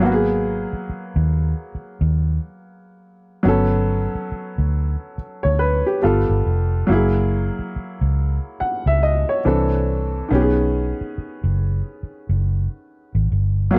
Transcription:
0.00 G#1 F#3 A#3 B3
0.05 F#4
0.12 G#4
0.73 muted fingered electric bass stroke
0.89 muted fingered electric bass stroke
1.16 D#2
1.75 muted fingered electric bass stroke
2.01 D#2
3.43 G1 F#3 B3 C#4
3.48 A4
4.15 muted fingered electric bass stroke
4.32 muted fingered electric bass stroke
4.58 D2
5.18 muted fingered electric bass stroke
5.43 D2 C#5
5.59 B4
5.86 G4
6.02 G1 G3 B3 F4 A4
6.29 G1
6.46 F1
6.87 F#1 F#3 A#3
6.91 E4 G#4
7.59 muted fingered electric bass stroke
7.76 muted fingered electric bass stroke
8.01 C#2
8.60 F#5, muted fingered electric bass stroke
8.86 C#2 E5
9.03 D#5
9.29 C#5
9.45 C2 E3 C4 D4 A4
10.28 B1 D#3 B3 C#4
10.35 G4
10.41 G#4
11.01 muted fingered electric bass stroke
11.18 muted fingered electric bass stroke
11.44 F#1
12.03 muted fingered electric bass stroke
12.29 F#1
13.15 G#1
13.32 G1
13.71 G#1 F#3 A#3 B3

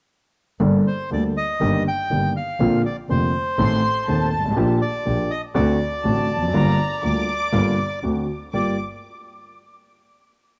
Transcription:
0.60 G1 G2 G3 A#3 D4 A4
0.87 C5
1.11 D2 D3 G3 A#3 D4 A4 D5
1.37 D#5
1.61 G1 G2 D#3 A#3 D4 G4
1.88 G5
2.11 G1 G2 D#3 A#3 D4 G4
2.37 F5
2.60 A#1 A#2 D3 A#3 C4 F4
2.86 D5
3.09 F1 F2 D3 A#3 C4 F4 C5
3.58 A1 A2 D#3 A3 C4 A4 C6
4.08 D#1 D#2 D#3 A3 C4 A4 A5
4.32 G#1
4.39 G1
4.45 G#1
4.51 A1
4.56 A#1 A#2 F3 A#3 D4 G4
4.82 D5
5.05 A#1 A#2 F3 A#3 D4 G4
5.31 D#5
5.54 D2 D3 A3 C4 F#4 D5
6.04 A1 A2 D3 A3 C4 F#4 A5
6.30 F1
6.36 E2
6.42 F2
6.48 F#2
6.53 G1 G2 D3 G3 A#3 F4 A#5
7.02 D2 D3 G3 A#3 F4 D6
7.52 G1 G2 D3 G3 A#3 F4
8.03 D2 D3 A3 C4 F#4
8.53 G1 G2 A#3 F4 G4 D5 D6

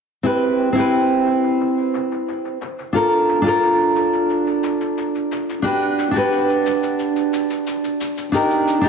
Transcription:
0.23 C4 E4 G4 B4, shaker
0.43 shaker
0.59 shaker
0.72 C4 E4, shaker
0.77 G4 B4
0.93 shaker
1.10 shaker
1.26 shaker
1.44 shaker
1.61 shaker
1.78 shaker
1.94 shaker
2.12 shaker
2.28 shaker
2.45 shaker
2.61 shaker
2.79 shaker
2.93 D4 F4 A4 A#4, shaker
3.13 shaker
3.29 shaker
3.42 D4 F4
3.46 A4 A#4, shaker
3.63 shaker
3.80 shaker
3.96 shaker
4.13 shaker
4.30 shaker
4.47 shaker
4.64 shaker
4.81 shaker
4.98 shaker
5.15 shaker
5.32 shaker
5.49 shaker
5.62 D4 F#4 G4 B4, shaker
5.82 shaker
5.99 shaker
6.11 D4 F#4
6.16 G4 B4, shaker
6.33 shaker
6.50 shaker
6.66 shaker
6.83 shaker
6.99 shaker
7.16 shaker
7.33 shaker
7.50 shaker
7.67 shaker
7.84 shaker
8.01 shaker
8.18 shaker
8.32 D4 D#4 G4 A#4, shaker
8.51 shaker
8.68 shaker
8.81 D4 D#4, shaker
8.86 G4

